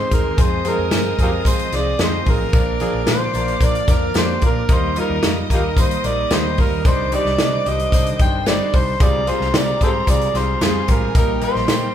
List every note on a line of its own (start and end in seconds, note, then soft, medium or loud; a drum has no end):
0.00 0.36 D#3 medium
0.00 2.50 G#3 medium
0.00 2.50 C4 medium
0.00 0.16 C5 medium
0.00 0.33 C5 medium
0.00 0.34 C6 medium
0.11 0.31 E2 medium
0.11 0.29 D#3 medium
0.11 0.29 G#3 medium
0.11 0.29 C4 medium
0.11 0.29 G#4 medium
0.11 0.43 A#4 medium
0.11 kick medium
0.11 closed hi-hat medium
0.11 tambourine medium
0.37 0.67 F2 medium
0.37 0.56 F3 medium
0.37 4.65 F3 medium
0.37 0.56 G#3 medium
0.37 0.56 C4 medium
0.37 0.56 G#4 loud
0.37 2.50 D#5 medium
0.37 2.50 D#6 medium
0.37 kick loud
0.37 closed hi-hat medium
0.37 tambourine medium
0.41 0.70 C5 medium
0.65 0.83 F3 medium
0.65 0.83 G#3 medium
0.65 0.83 C4 medium
0.65 0.83 G#4 loud
0.65 closed hi-hat medium
0.65 tambourine medium
0.69 1.21 A#4 medium
0.78 0.88 F2 medium
0.91 1.11 G2 medium
0.91 1.10 F3 medium
0.91 1.10 G#3 medium
0.91 1.10 C4 medium
0.91 1.10 G#4 medium
0.91 snare loud
0.91 closed hi-hat medium
0.91 tambourine medium
1.19 1.38 F2 loud
1.19 1.37 F3 medium
1.19 1.37 G#3 medium
1.19 1.38 C4 medium
1.19 1.29 F4 medium
1.19 1.31 G4 medium
1.19 1.38 G#4 medium
1.19 1.51 A#4 medium
1.19 kick medium
1.19 closed hi-hat medium
1.19 tambourine medium
1.45 1.65 F3 medium
1.45 1.65 G#3 medium
1.45 1.65 C4 medium
1.45 1.65 G#4 medium
1.45 kick medium
1.45 closed hi-hat loud
1.45 tambourine medium
1.49 1.78 C5 medium
1.59 closed hi-hat medium
1.72 1.92 C2 medium
1.72 1.91 F3 medium
1.72 1.91 G#3 medium
1.72 1.91 C4 medium
1.72 1.91 G#4 medium
1.72 2.01 D5 medium
1.72 snare soft
1.72 closed hi-hat medium
1.72 tambourine medium
1.99 2.19 F2 medium
1.99 2.18 F3 medium
1.99 2.18 G#3 medium
1.99 2.18 C4 medium
1.99 2.18 D#4 medium
1.99 snare loud
1.99 closed hi-hat medium
1.99 tambourine medium
2.04 2.32 C5 medium
2.26 2.46 A1 loud
2.26 2.45 F3 medium
2.26 2.45 G#3 medium
2.26 2.45 C4 medium
2.26 2.45 G#4 medium
2.26 kick medium
2.26 open hi-hat soft
2.26 tambourine soft
2.31 3.10 A#4 medium
2.53 2.83 A#1 medium
2.53 2.72 F3 medium
2.53 2.72 A#3 medium
2.53 6.82 A#3 medium
2.53 2.72 D4 medium
2.53 4.68 D4 medium
2.53 2.72 A#4 loud
2.53 4.65 D5 medium
2.53 4.65 D6 medium
2.53 kick loud
2.53 closed hi-hat medium
2.53 tambourine medium
2.80 2.99 F3 medium
2.80 2.99 A#3 medium
2.80 2.99 D4 medium
2.80 2.99 G#4 loud
2.80 closed hi-hat medium
2.80 tambourine medium
2.93 3.03 A#1 medium
3.06 3.27 A#2 medium
3.06 3.26 F3 medium
3.06 3.26 A#3 medium
3.06 3.26 D4 medium
3.06 3.26 F4 medium
3.06 3.67 C5 medium
3.06 snare loud
3.06 closed hi-hat medium
3.06 tambourine medium
3.34 3.54 A#1 medium
3.34 3.53 F3 medium
3.34 3.53 A#3 medium
3.34 3.53 D4 medium
3.34 3.53 A#4 medium
3.34 closed hi-hat medium
3.34 tambourine medium
3.48 closed hi-hat soft
3.60 3.81 A#2 medium
3.60 3.80 F3 medium
3.60 3.80 A#3 medium
3.60 3.80 D4 medium
3.60 3.80 A#4 medium
3.60 kick medium
3.60 closed hi-hat medium
3.60 tambourine medium
3.65 3.94 D5 medium
3.75 closed hi-hat medium
3.88 4.08 F2 medium
3.88 4.07 F3 medium
3.88 4.07 A#3 medium
3.88 4.07 D4 medium
3.88 4.07 A#4 medium
3.88 kick loud
3.88 snare soft
3.88 closed hi-hat medium
3.88 tambourine medium
3.92 4.21 A#4 medium
4.14 4.35 F2 medium
4.14 4.33 F3 medium
4.14 4.34 A#3 medium
4.14 4.34 D4 medium
4.14 4.34 G4 loud
4.14 snare loud
4.14 closed hi-hat medium
4.14 tambourine medium
4.19 4.44 C5 medium
4.41 4.62 A#2 medium
4.41 4.61 F3 medium
4.41 4.61 A#3 medium
4.41 4.61 D4 medium
4.41 4.61 A#4 medium
4.41 kick medium
4.41 closed hi-hat medium
4.41 tambourine medium
4.46 4.75 A#4 medium
4.69 4.99 D#2 loud
4.69 4.88 G3 medium
4.69 6.83 G3 medium
4.69 4.88 A#3 medium
4.69 6.83 D#4 medium
4.69 4.88 D#4 medium
4.69 4.88 A#4 loud
4.69 6.81 D#5 medium
4.69 6.81 D#6 medium
4.69 kick loud
4.69 closed hi-hat medium
4.69 tambourine medium
4.73 4.98 C5 medium
4.96 5.15 G3 medium
4.96 5.15 A#3 medium
4.96 5.15 D#4 medium
4.96 5.15 F4 medium
4.96 closed hi-hat medium
4.96 tambourine medium
5.00 5.39 A#4 medium
5.09 5.19 D#2 medium
5.22 5.43 F2 medium
5.22 5.41 G3 medium
5.22 5.41 A#3 medium
5.22 5.41 D#4 medium
5.22 5.41 F4 medium
5.22 snare loud
5.22 closed hi-hat medium
5.22 tambourine medium
5.50 5.78 D#2 medium
5.50 5.68 G3 medium
5.50 5.68 A#3 medium
5.50 5.68 D#4 medium
5.50 5.61 F4 medium
5.50 5.62 G4 medium
5.50 5.68 A#4 medium
5.50 5.82 A#4 medium
5.50 kick medium
5.50 closed hi-hat medium
5.50 tambourine soft
5.77 5.96 D#3 medium
5.77 5.95 G3 medium
5.77 5.95 A#3 medium
5.77 5.95 D#4 medium
5.77 5.95 C5 medium
5.77 6.08 C5 medium
5.77 kick medium
5.77 closed hi-hat medium
5.77 tambourine medium
5.91 closed hi-hat medium
6.04 6.24 A#1 medium
6.04 6.22 G3 medium
6.04 6.22 A#3 medium
6.04 6.22 D#4 medium
6.04 6.22 A#4 medium
6.04 6.35 D5 medium
6.04 closed hi-hat medium
6.04 tambourine medium
6.30 6.60 D#2 medium
6.30 6.49 G3 medium
6.30 6.49 A#3 medium
6.30 6.50 D#4 medium
6.30 6.50 G4 medium
6.30 6.62 C5 medium
6.30 snare loud
6.30 closed hi-hat medium
6.30 tambourine medium
6.57 6.76 G3 medium
6.57 6.76 A#3 medium
6.57 6.77 D#4 medium
6.57 6.77 A#4 medium
6.57 6.86 A#4 medium
6.57 kick medium
6.57 open hi-hat soft
6.57 tambourine soft
6.71 6.81 D#2 medium
6.85 7.14 C2 medium
6.85 8.98 D3 medium
6.85 8.98 D#3 medium
6.85 7.03 G3 medium
6.85 8.98 C4 medium
6.85 7.03 D4 medium
6.85 7.04 D#4 medium
6.85 8.17 C5 medium
6.85 7.04 C5 loud
6.85 7.12 C5 medium
6.85 8.17 D6 medium
6.85 kick loud
6.85 closed hi-hat medium
6.85 tambourine medium
7.12 7.30 G3 medium
7.12 7.30 D4 medium
7.12 7.31 D#4 medium
7.12 7.31 G4 loud
7.12 7.70 D5 loud
7.12 closed hi-hat medium
7.12 tambourine medium
7.25 7.35 C2 medium
7.25 snare soft
7.38 7.58 C3 medium
7.38 7.57 G3 medium
7.38 7.57 D4 medium
7.38 7.58 D#4 medium
7.38 7.57 D#5 medium
7.38 snare loud
7.38 closed hi-hat medium
7.38 tambourine medium
7.66 7.86 C2 loud
7.66 7.84 G3 medium
7.66 7.84 D4 medium
7.66 7.84 D#4 medium
7.66 7.84 G4 medium
7.66 8.21 D#5 loud
7.66 closed hi-hat medium
7.66 tambourine medium
7.79 closed hi-hat medium
7.92 8.12 C3 loud
7.92 8.11 G3 medium
7.92 8.11 D4 medium
7.92 8.11 D#4 medium
7.92 8.12 C5 medium
7.92 kick medium
7.92 closed hi-hat medium
7.92 tambourine loud
8.06 closed hi-hat medium
8.19 8.59 G1 medium
8.19 8.38 G3 medium
8.19 8.38 D4 medium
8.19 8.38 D#4 medium
8.19 8.98 C5 medium
8.19 8.38 C5 medium
8.19 8.46 G5 medium
8.19 8.99 C6 medium
8.19 kick loud
8.19 closed hi-hat medium
8.19 tambourine medium
8.46 8.65 G3 medium
8.46 8.65 D4 medium
8.46 8.65 D#4 medium
8.46 8.65 C5 medium
8.46 8.77 D5 medium
8.46 snare loud
8.46 closed hi-hat medium
8.46 tambourine medium
8.73 8.93 C2 medium
8.73 8.92 G3 medium
8.73 8.92 D4 medium
8.73 8.92 D#4 medium
8.73 8.92 C5 medium
8.73 9.05 C5 medium
8.73 kick medium
8.73 open hi-hat soft
8.73 tambourine medium
9.00 9.30 C2 medium
9.00 11.95 F3 medium
9.00 9.18 G3 medium
9.00 11.14 G#3 medium
9.00 9.18 C4 medium
9.00 9.18 F4 medium
9.00 11.13 F4 medium
9.00 9.19 G#4 loud
9.00 10.58 A#4 medium
9.00 9.31 D5 loud
9.00 10.58 A#5 medium
9.00 kick loud
9.00 closed hi-hat medium
9.00 tambourine medium
9.27 9.45 G3 medium
9.27 9.45 C4 medium
9.27 9.45 F4 medium
9.27 9.45 G#4 loud
9.27 9.58 C5 medium
9.27 closed hi-hat medium
9.27 tambourine medium
9.40 9.50 C2 medium
9.40 snare soft
9.53 9.73 C3 medium
9.53 9.72 G3 medium
9.53 9.72 C4 medium
9.53 9.72 F4 medium
9.53 9.72 G4 medium
9.53 9.82 D5 medium
9.53 snare loud
9.53 closed hi-hat medium
9.53 tambourine medium
9.81 10.01 G#2 medium
9.81 9.99 G3 medium
9.81 9.99 C4 medium
9.81 9.99 F4 medium
9.81 9.90 G4 medium
9.81 9.99 G#4 medium
9.81 9.90 A4 medium
9.81 10.11 C5 medium
9.81 kick medium
9.81 closed hi-hat medium
9.81 tambourine medium
10.07 10.27 C3 medium
10.07 10.26 G3 medium
10.07 10.26 C4 medium
10.07 10.26 F4 medium
10.07 10.26 G#4 medium
10.07 10.39 D5 loud
10.07 kick medium
10.07 closed hi-hat medium
10.07 tambourine loud
10.21 closed hi-hat medium
10.34 10.54 C2 medium
10.34 10.53 G3 medium
10.34 10.53 C4 medium
10.34 10.53 F4 medium
10.34 10.53 G#4 medium
10.34 10.63 C5 medium
10.34 snare soft
10.34 closed hi-hat medium
10.34 tambourine medium
10.61 10.81 F2 medium
10.61 10.80 G3 medium
10.61 10.80 C4 medium
10.61 10.80 F4 medium
10.61 10.80 G#4 loud
10.61 11.14 G#4 medium
10.61 10.93 C5 medium
10.61 11.14 G#5 medium
10.61 snare loud
10.61 closed hi-hat medium
10.61 tambourine medium
10.88 11.08 A1 medium
10.88 11.06 G3 medium
10.88 11.06 C4 medium
10.88 11.07 F4 medium
10.88 11.07 G4 medium
10.88 11.17 A#4 medium
10.88 kick medium
10.88 closed hi-hat medium
10.88 tambourine medium
11.14 11.44 A#1 medium
11.14 11.34 G3 medium
11.14 11.34 A#3 medium
11.14 11.95 A#3 medium
11.14 11.95 D#4 medium
11.14 11.34 D#4 medium
11.14 11.95 G4 medium
11.14 11.34 A#4 loud
11.14 11.42 A#4 medium
11.14 11.95 G5 medium
11.14 kick loud
11.14 closed hi-hat medium
11.14 tambourine medium
11.41 11.60 G3 medium
11.41 11.60 A#3 medium
11.41 11.60 D#4 medium
11.41 11.60 A#4 medium
11.41 11.95 C5 medium
11.41 closed hi-hat medium
11.41 tambourine medium
11.55 11.65 A#1 medium
11.55 snare soft
11.68 11.89 A#2 medium
11.68 11.87 G3 medium
11.68 11.87 A#3 medium
11.68 11.87 D#4 medium
11.68 11.87 A#4 medium
11.68 snare loud
11.68 closed hi-hat medium
11.68 tambourine medium